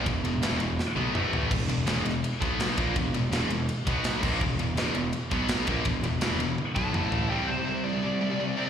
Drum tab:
CC |--------|x-------|-------x|--------|
RD |xxxx----|-xxxxxxx|xxxxxxx-|-xxxxxxx|
SD |--o-o---|--o---o-|--o---o-|--o---o-|
T1 |-----o--|--------|--------|--------|
T2 |------o-|--------|--------|--------|
FT |-------o|--------|--------|--------|
BD |o-------|o----o-o|o----o-o|o----o-o|

CC |--------|--------|
RD |xxxx----|--------|
SD |--o-----|--------|
T1 |----o---|--------|
T2 |------o-|--------|
FT |-------o|--------|
BD |o----o--|--------|